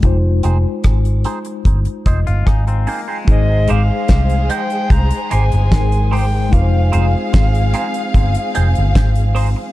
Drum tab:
HH |x-x-xxxxxxxxxxo-|x-x-xxxxxxxxxxo-|x-x-xxxxxxxxxxo-|
SD |----r-----r-r---|----o-------o---|----o-------o---|
BD |o---o---o-o-o---|o---o---o---o---|o---o---o---o---|